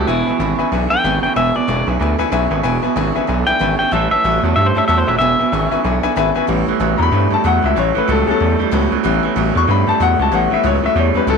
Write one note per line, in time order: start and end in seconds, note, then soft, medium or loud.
0.07 0.23 E1 loud
0.07 0.27 E2 medium
0.07 0.25 E2 medium
0.07 0.27 B2 medium
0.07 0.25 B2 medium
0.07 0.27 E3 medium
0.07 0.27 G#3 medium
0.07 0.26 D4 medium
0.07 0.70 E4 loud
0.07 0.26 E4 medium
0.07 0.19 B4 medium
0.07 0.19 E5 medium
0.07 0.19 G#5 loud
0.26 0.32 E1 medium
0.26 0.38 E2 medium
0.26 0.39 B2 medium
0.26 0.39 E3 soft
0.26 0.40 G#3 soft
0.26 0.40 D4 soft
0.26 0.34 B4 medium
0.26 0.35 E5 medium
0.26 0.34 G#5 medium
0.39 0.55 G#1 loud
0.39 0.57 E2 medium
0.39 0.59 E2 medium
0.39 0.59 B2 medium
0.39 0.57 C#3 medium
0.39 0.59 E3 medium
0.39 0.59 G#3 medium
0.39 0.59 D4 medium
0.39 0.58 E4 medium
0.39 0.51 B4 medium
0.39 0.52 E5 medium
0.39 0.51 G#5 medium
0.58 0.64 G#1 medium
0.58 0.70 E2 medium
0.58 0.71 C#3 medium
0.58 0.71 E3 soft
0.58 0.72 G#3 medium
0.58 0.72 D4 medium
0.58 0.72 E4 medium
0.58 0.67 B4 medium
0.58 0.67 E5 medium
0.58 0.67 G#5 loud
0.72 0.87 B1 medium
0.72 0.89 E2 medium
0.72 0.89 D3 medium
0.72 0.91 E3 medium
0.72 0.91 G#3 medium
0.72 0.91 D4 medium
0.72 0.89 E4 medium
0.72 0.83 B4 medium
0.72 0.83 E5 medium
0.72 0.84 G#5 medium
0.90 0.96 B1 medium
0.90 1.03 E2 medium
0.90 1.03 D3 medium
0.90 1.04 E3 soft
0.90 1.04 G#3 medium
0.90 1.04 D4 soft
0.90 1.04 E4 medium
0.90 0.99 B4 medium
0.90 0.99 E5 medium
0.90 1.22 G5 medium
0.90 0.99 G#5 loud
1.04 1.19 G#1 medium
1.04 1.21 E2 medium
1.04 1.23 E2 medium
1.04 1.23 B2 medium
1.04 1.21 C#3 medium
1.04 1.23 E3 medium
1.04 1.23 G#3 medium
1.04 1.23 D4 medium
1.04 1.22 E4 medium
1.04 1.15 B4 loud
1.04 1.16 E5 medium
1.04 1.16 G#5 loud
1.23 1.28 G#1 medium
1.23 1.35 E2 medium
1.23 1.35 C#3 medium
1.23 1.36 E3 soft
1.23 1.36 G#3 medium
1.23 1.36 D4 soft
1.23 1.36 E4 medium
1.23 1.31 B4 medium
1.23 1.31 E5 medium
1.23 1.35 G5 medium
1.23 1.31 G#5 medium
1.36 1.51 E1 medium
1.36 1.55 E2 medium
1.36 1.53 E2 medium
1.36 1.53 B2 medium
1.36 1.55 B2 medium
1.36 1.55 E3 medium
1.36 1.55 G#3 medium
1.36 1.54 D4 medium
1.36 1.53 E4 medium
1.36 1.47 B4 medium
1.36 1.48 E5 medium
1.36 1.56 E5 medium
1.36 1.47 G#5 loud
1.54 1.61 E1 medium
1.54 1.67 E2 medium
1.54 1.67 B2 medium
1.54 1.67 E3 soft
1.54 1.68 G#3 soft
1.54 1.68 E4 medium
1.54 1.62 B4 medium
1.54 1.86 D5 medium
1.54 1.62 E5 medium
1.54 1.63 G#5 medium
1.68 1.83 E1 medium
1.68 1.87 E2 medium
1.68 1.85 E2 medium
1.68 1.87 B2 medium
1.68 1.85 C#3 medium
1.68 1.87 E3 medium
1.68 1.87 G#3 medium
1.68 1.86 D4 medium
1.68 1.85 E4 medium
1.68 1.79 B4 medium
1.68 1.79 E5 medium
1.68 1.79 G#5 medium
1.87 1.97 B1 medium
1.87 1.98 E2 medium
1.87 1.99 C#3 medium
1.87 1.99 E3 soft
1.87 2.00 G#3 soft
1.87 2.00 D4 soft
1.87 2.00 E4 medium
1.87 1.95 B4 medium
1.87 1.95 E5 medium
1.87 1.95 G#5 medium
1.99 2.15 D2 loud
1.99 2.17 E2 medium
1.99 2.17 D3 medium
1.99 2.19 E3 medium
1.99 2.19 G#3 medium
1.99 2.18 D4 medium
1.99 2.17 E4 medium
1.99 2.12 B4 medium
1.99 2.12 E5 medium
1.99 2.12 G#5 medium
2.19 2.24 D2 medium
2.19 2.31 E2 medium
2.19 2.31 D3 medium
2.19 2.31 E3 medium
2.19 2.32 G#3 medium
2.19 2.32 D4 medium
2.19 2.32 E4 medium
2.19 2.27 B4 loud
2.19 2.27 E5 loud
2.19 2.27 G#5 loud
2.32 2.47 B1 medium
2.32 2.49 E2 medium
2.32 2.51 E2 medium
2.32 2.51 B2 medium
2.32 2.49 C#3 medium
2.32 2.51 E3 medium
2.32 2.51 G#3 medium
2.32 2.50 D4 medium
2.32 2.49 E4 loud
2.32 2.43 B4 loud
2.32 2.44 E5 loud
2.32 2.44 G#5 loud
2.50 2.61 G#1 medium
2.50 2.62 E2 medium
2.50 2.63 C#3 medium
2.50 2.63 E3 soft
2.50 2.63 G#3 medium
2.50 2.64 D4 medium
2.50 2.64 E4 medium
2.50 2.58 B4 medium
2.50 2.59 E5 medium
2.50 2.59 G#5 medium
2.63 2.79 E1 medium
2.63 2.83 E2 medium
2.63 2.81 E2 medium
2.63 2.83 B2 medium
2.63 2.81 B2 medium
2.63 2.83 E3 loud
2.63 2.83 G#3 medium
2.63 2.82 D4 medium
2.63 2.81 E4 medium
2.63 2.75 B4 loud
2.63 2.75 E5 loud
2.63 2.75 G#5 loud
2.82 2.88 E1 medium
2.82 2.94 E2 medium
2.82 2.95 B2 medium
2.82 2.95 E3 soft
2.82 2.96 G#3 soft
2.82 2.96 D4 medium
2.82 2.95 E4 medium
2.82 2.90 B4 medium
2.82 2.91 E5 medium
2.82 2.91 G#5 medium
2.95 3.11 G#1 medium
2.95 3.13 E2 medium
2.95 3.15 E2 medium
2.95 3.15 B2 medium
2.95 3.13 C#3 medium
2.95 3.15 E3 medium
2.95 3.15 G#3 medium
2.95 3.15 D4 loud
2.95 3.14 E4 loud
2.95 3.08 B4 medium
2.95 3.08 E5 medium
2.95 3.08 G#5 medium
3.15 3.21 G#1 medium
3.15 3.27 E2 medium
3.15 3.27 C#3 medium
3.15 3.26 E3 soft
3.15 3.27 G#3 medium
3.15 3.28 D4 medium
3.15 3.28 E4 medium
3.15 3.23 B4 medium
3.15 3.23 E5 medium
3.15 3.23 G#5 loud
3.27 3.43 B1 loud
3.27 3.45 E2 medium
3.27 3.45 D3 medium
3.27 3.47 E3 medium
3.27 3.47 G#3 medium
3.27 3.46 D4 medium
3.27 3.45 E4 medium
3.27 3.40 B4 medium
3.27 3.40 E5 medium
3.27 3.40 G#5 medium
3.46 3.53 B1 medium
3.46 3.59 E2 medium
3.46 3.59 D3 medium
3.46 3.59 E3 soft
3.46 3.59 G#3 soft
3.46 3.60 D4 medium
3.46 3.60 E4 medium
3.46 3.55 B4 medium
3.46 3.55 E5 medium
3.46 3.78 G5 loud
3.46 3.55 G#5 loud
3.59 3.75 G#1 medium
3.59 3.79 E2 medium
3.59 3.77 E2 medium
3.59 3.79 B2 medium
3.59 3.78 C#3 medium
3.59 3.79 E3 medium
3.59 3.79 G#3 medium
3.59 3.79 D4 medium
3.59 3.77 E4 medium
3.59 3.72 B4 loud
3.59 3.72 E5 medium
3.59 3.72 G#5 loud
3.79 3.85 G#1 medium
3.79 3.91 E2 medium
3.79 3.92 C#3 medium
3.79 3.91 E3 soft
3.79 3.92 G#3 soft
3.79 3.92 D4 medium
3.79 3.92 E4 soft
3.79 3.87 B4 medium
3.79 3.87 E5 medium
3.79 3.92 G5 medium
3.79 3.87 G#5 medium
3.91 4.07 A1 medium
3.91 4.11 A2 medium
3.91 4.10 A2 medium
3.91 4.11 E3 medium
3.91 4.10 E3 loud
3.91 4.11 G3 medium
3.91 4.11 C#4 medium
3.91 4.10 E4 medium
3.91 4.04 C#5 medium
3.91 4.10 E5 medium
3.91 4.04 E5 medium
3.91 4.04 A5 loud
4.11 4.17 A1 medium
4.11 4.23 A2 medium
4.11 4.23 E3 medium
4.11 4.24 G3 soft
4.11 4.24 C#4 soft
4.11 4.24 E4 medium
4.11 4.19 C#5 medium
4.11 4.42 E5 loud
4.11 4.19 E5 medium
4.11 4.19 A5 medium
4.24 4.39 A1 loud
4.24 4.43 A2 medium
4.24 4.42 A2 medium
4.24 4.43 E3 medium
4.24 4.42 F#3 medium
4.24 4.43 G3 medium
4.24 4.43 C#4 medium
4.24 4.41 E4 medium
4.24 4.36 C#5 medium
4.24 4.36 E5 medium
4.24 4.36 A5 medium
4.42 4.53 E2 medium
4.42 4.55 A2 medium
4.42 4.55 F#3 medium
4.42 4.56 G3 soft
4.42 4.57 C#4 medium
4.42 4.56 E4 medium
4.42 4.52 C#5 medium
4.42 4.52 E5 medium
4.42 4.52 A5 medium
4.56 4.71 G2 medium
4.56 4.73 A2 medium
4.56 4.75 E3 medium
4.56 4.74 G3 medium
4.56 4.76 G3 medium
4.56 4.68 C#5 medium
4.56 4.66 E5 loud
4.56 4.68 E5 medium
4.56 4.68 A5 medium
4.66 4.77 C5 medium
4.75 4.81 G2 medium
4.75 4.87 A2 medium
4.75 4.87 G3 medium
4.75 4.88 G3 soft
4.75 4.88 C#4 medium
4.75 4.88 E4 medium
4.75 4.83 C#5 medium
4.75 4.84 E5 medium
4.75 4.86 E5 medium
4.75 4.84 A5 loud
4.88 5.04 E2 medium
4.88 5.07 A2 medium
4.88 5.05 A2 medium
4.88 5.07 E3 medium
4.88 5.05 F#3 medium
4.88 5.08 G3 medium
4.88 5.07 C#4 medium
4.88 5.05 E4 medium
4.88 5.00 C#5 loud
4.88 4.98 E5 medium
4.88 5.00 E5 medium
4.88 5.00 A5 loud
4.98 5.09 C5 medium
5.06 5.18 D#1 medium
5.06 5.19 A2 medium
5.06 5.19 F#3 medium
5.06 5.21 G3 soft
5.06 5.21 C#4 medium
5.06 5.20 E4 medium
5.06 5.15 C#5 medium
5.06 5.15 E5 medium
5.06 5.17 E5 medium
5.06 5.15 A5 medium
5.19 5.35 E1 medium
5.19 5.37 E2 medium
5.19 5.39 E2 medium
5.19 5.37 B2 medium
5.19 5.39 B2 medium
5.19 5.40 E3 medium
5.19 5.40 G#3 medium
5.19 5.39 D4 medium
5.19 5.38 E4 medium
5.19 5.32 B4 medium
5.19 5.81 E5 loud
5.19 5.31 E5 medium
5.19 5.32 G#5 loud
5.39 5.45 E1 medium
5.39 5.51 E2 medium
5.39 5.51 B2 medium
5.39 5.52 E3 soft
5.39 5.52 G#3 soft
5.39 5.53 D4 soft
5.39 5.52 E4 medium
5.39 5.47 B4 medium
5.39 5.47 E5 medium
5.39 5.47 G#5 medium
5.52 5.67 G#1 medium
5.52 5.69 E2 medium
5.52 5.71 E2 medium
5.52 5.72 B2 medium
5.52 5.69 C#3 medium
5.52 5.72 E3 medium
5.52 5.72 G#3 medium
5.52 5.71 D4 medium
5.52 5.70 E4 medium
5.52 5.64 B4 medium
5.52 5.64 E5 medium
5.52 5.64 G#5 medium
5.71 5.77 G#1 medium
5.71 5.82 E2 medium
5.71 5.83 C#3 medium
5.71 5.83 E3 soft
5.71 5.84 G#3 medium
5.71 5.85 D4 medium
5.71 5.84 E4 medium
5.71 5.79 B4 medium
5.71 5.79 E5 medium
5.71 5.79 G#5 loud
5.84 6.00 B1 medium
5.84 6.01 E2 medium
5.84 6.01 D3 medium
5.84 6.03 E3 medium
5.84 6.04 G#3 medium
5.84 6.03 D4 medium
5.84 6.02 E4 medium
5.84 5.96 B4 medium
5.84 5.96 E5 medium
5.84 5.96 G#5 medium
6.03 6.08 B1 medium
6.03 6.15 E2 medium
6.03 6.15 D3 medium
6.03 6.15 E3 soft
6.03 6.16 G#3 medium
6.03 6.16 D4 medium
6.03 6.16 E4 medium
6.03 6.11 B4 loud
6.03 6.11 E5 loud
6.03 6.11 G#5 loud
6.16 6.32 G#1 medium
6.16 6.35 E2 medium
6.16 6.33 E2 medium
6.16 6.35 B2 medium
6.16 6.34 C#3 medium
6.16 6.35 E3 loud
6.16 6.35 G#3 loud
6.16 6.34 D4 loud
6.16 6.33 E4 loud
6.16 6.28 B4 loud
6.16 6.28 E5 loud
6.16 6.28 G#5 loud
6.35 6.41 G#1 medium
6.35 6.47 E2 medium
6.35 6.47 C#3 medium
6.35 6.46 E3 medium
6.35 6.48 G#3 medium
6.35 6.48 D4 medium
6.35 6.48 E4 medium
6.35 6.43 B4 medium
6.35 6.43 E5 medium
6.35 6.43 G#5 loud
6.47 6.63 A1 medium
6.47 6.67 A2 medium
6.47 6.66 A2 medium
6.47 6.67 E3 medium
6.47 6.66 E3 medium
6.47 6.97 G3 medium
6.47 6.67 G3 medium
6.47 6.97 B3 medium
6.47 6.67 C#4 loud
6.47 6.97 C#4 medium
6.47 6.65 E4 medium
6.66 6.73 A1 medium
6.66 6.79 A2 medium
6.66 6.80 E3 medium
6.66 6.79 G3 soft
6.66 6.80 C#4 medium
6.66 6.80 E4 medium
6.80 6.95 A1 loud
6.80 6.99 A2 medium
6.80 6.97 A2 medium
6.80 6.99 E3 medium
6.80 6.98 F#3 medium
6.80 6.99 G3 medium
6.80 6.99 C#4 medium
6.80 6.97 E4 medium
6.98 7.10 E2 medium
6.98 7.11 A2 medium
6.98 7.11 F#3 medium
6.98 7.11 G3 soft
6.98 7.12 C#4 soft
6.98 7.12 E4 medium
6.98 6.99 A#5 medium
7.02 7.32 B5 loud
7.11 7.27 G2 medium
7.11 7.29 A2 medium
7.11 7.31 E3 medium
7.11 7.29 G3 soft
7.11 7.29 G3 medium
7.11 7.31 G3 medium
7.11 7.29 B3 soft
7.11 7.29 C#4 soft
7.11 7.31 C#4 medium
7.11 7.29 E4 medium
7.30 7.36 G2 medium
7.30 7.43 A2 medium
7.30 7.43 G3 medium
7.30 7.44 G3 soft
7.30 7.44 C#4 medium
7.30 7.44 E4 medium
7.30 7.45 A5 medium
7.44 7.59 E2 medium
7.44 7.63 A2 medium
7.44 7.61 A2 medium
7.44 7.63 E3 medium
7.44 7.61 F#3 medium
7.44 7.64 G3 medium
7.44 7.63 C#4 medium
7.44 7.61 E4 loud
7.44 7.64 F#5 loud
7.62 7.74 C#2 medium
7.62 7.74 A2 medium
7.62 7.75 F#3 medium
7.62 7.76 G3 soft
7.62 7.76 C#4 soft
7.62 7.76 E4 medium
7.62 7.77 E5 medium
7.75 7.92 A1 medium
7.75 7.93 A2 medium
7.75 7.95 A2 medium
7.75 7.93 E3 medium
7.75 7.96 E3 medium
7.75 7.96 G3 medium
7.75 7.95 C#4 medium
7.75 7.94 E4 medium
7.75 7.96 C#5 medium
7.95 8.01 A1 medium
7.95 8.06 A2 medium
7.95 8.07 E3 medium
7.95 8.08 G3 soft
7.95 8.08 C#4 medium
7.95 8.08 E4 medium
7.95 8.09 B4 medium
8.07 8.23 C#2 loud
8.07 8.25 A2 medium
8.07 8.27 A2 medium
8.07 8.27 E3 medium
8.07 8.25 F#3 medium
8.07 8.27 G3 medium
8.07 8.28 C#4 medium
8.07 8.26 E4 medium
8.11 8.28 A4 medium
8.27 8.33 C#2 medium
8.27 8.39 A2 medium
8.27 8.39 F#3 medium
8.27 8.47 G3 medium
8.27 8.40 G3 soft
8.27 8.47 B3 soft
8.27 8.41 C#4 medium
8.27 8.48 C#4 medium
8.27 8.40 E4 medium
8.31 8.91 A4 loud
8.40 8.55 E2 medium
8.40 8.57 A2 medium
8.40 8.59 E3 medium
8.40 8.58 G3 medium
8.40 8.59 G3 medium
8.40 8.59 C#4 medium
8.40 8.58 E4 medium
8.59 8.65 E2 medium
8.59 8.71 A2 medium
8.59 8.71 G3 medium
8.59 8.71 G3 soft
8.59 8.71 C#4 soft
8.59 8.72 E4 medium
8.71 8.87 C#2 loud
8.71 8.91 A2 medium
8.71 8.89 A2 medium
8.71 8.91 E3 medium
8.71 8.89 F#3 medium
8.71 8.89 G3 medium
8.71 8.91 G3 loud
8.71 8.90 B3 soft
8.71 8.91 C#4 loud
8.71 8.90 C#4 medium
8.71 8.89 E4 loud
8.90 8.97 C#2 medium
8.90 9.02 A2 medium
8.90 9.03 F#3 medium
8.90 9.03 G3 medium
8.90 9.04 C#4 medium
8.90 9.04 E4 medium
9.03 9.20 A1 medium
9.03 9.21 A2 medium
9.03 9.23 A2 loud
9.03 9.23 E3 medium
9.03 9.21 E3 medium
9.03 9.53 G3 medium
9.03 9.23 G3 loud
9.03 9.53 B3 medium
9.03 9.53 C#4 medium
9.03 9.23 C#4 loud
9.03 9.21 E4 loud
9.23 9.28 A1 medium
9.23 9.35 A2 medium
9.23 9.35 E3 medium
9.23 9.36 G3 medium
9.23 9.36 C#4 medium
9.23 9.36 E4 medium
9.36 9.51 A1 loud
9.36 9.55 A2 loud
9.36 9.53 A2 medium
9.36 9.55 E3 medium
9.36 9.53 F#3 medium
9.36 9.56 G3 medium
9.36 9.55 C#4 medium
9.36 9.54 E4 loud
9.55 9.66 E2 medium
9.55 9.66 A2 medium
9.55 9.67 F#3 medium
9.55 9.67 G3 soft
9.55 9.68 C#4 medium
9.55 9.68 E4 medium
9.55 9.69 C#6 loud
9.67 9.83 G2 loud
9.67 9.85 A2 medium
9.67 9.87 E3 medium
9.67 9.85 G3 medium
9.67 9.85 G3 soft
9.67 9.87 G3 medium
9.67 9.86 B3 soft
9.67 9.86 C#4 soft
9.67 9.87 C#4 medium
9.67 9.85 E4 medium
9.67 9.88 B5 medium
9.86 9.93 G2 medium
9.86 9.99 A2 medium
9.86 9.99 G3 medium
9.86 10.00 G3 soft
9.86 10.00 C#4 medium
9.86 10.00 E4 medium
9.86 10.00 A5 medium
10.00 10.15 E2 loud
10.00 10.17 A2 medium
10.00 10.19 A2 medium
10.00 10.19 E3 medium
10.00 10.17 F#3 medium
10.00 10.20 G3 medium
10.00 10.19 C#4 loud
10.00 10.18 E4 loud
10.00 10.20 F#5 loud
10.19 10.29 C#2 medium
10.19 10.31 A2 medium
10.19 10.31 F#3 medium
10.19 10.31 G3 soft
10.19 10.32 C#4 medium
10.19 10.32 E4 medium
10.19 10.33 A5 medium
10.32 10.47 A1 medium
10.32 10.51 A2 medium
10.32 10.49 A2 medium
10.32 10.49 E3 medium
10.32 10.51 E3 medium
10.32 10.80 G3 medium
10.32 10.51 G3 medium
10.32 10.81 B3 medium
10.32 10.81 C#4 medium
10.32 10.50 C#4 medium
10.32 10.49 E4 medium
10.32 10.52 F#5 medium
10.50 10.56 A1 medium
10.50 10.62 A2 medium
10.50 10.63 E3 medium
10.50 10.63 G3 soft
10.50 10.64 C#4 medium
10.50 10.64 E4 medium
10.50 10.65 E5 medium
10.63 10.79 C#2 medium
10.63 10.83 A2 medium
10.63 10.81 A2 medium
10.63 10.83 E3 medium
10.63 10.81 F#3 medium
10.63 10.83 G3 medium
10.63 10.82 C#4 medium
10.63 10.81 E4 medium
10.63 10.84 C#5 loud
10.82 10.88 C#2 medium
10.82 10.94 A2 medium
10.82 10.95 F#3 medium
10.82 10.95 G3 soft
10.82 10.96 C#4 medium
10.82 10.96 E4 medium
10.82 10.97 E5 medium
10.95 11.11 E2 loud
10.95 11.13 A2 medium
10.95 11.15 E3 medium
10.95 11.13 G3 medium
10.95 11.15 G3 medium
10.95 11.14 C#4 medium
10.95 11.13 E4 medium
10.95 11.16 C#5 medium
11.14 11.20 E2 medium
11.14 11.26 A2 medium
11.14 11.27 G3 soft
11.14 11.27 G3 medium
11.14 11.27 G3 soft
11.14 11.27 B3 soft
11.14 11.27 C#4 medium
11.14 11.28 E4 medium
11.14 11.29 B4 medium
11.27 11.38 C#2 loud
11.27 11.38 A2 medium
11.27 11.38 E3 medium
11.27 11.38 F#3 medium
11.27 11.38 G3 loud
11.27 11.38 C#4 medium
11.27 11.38 E4 medium
11.27 11.38 A4 loud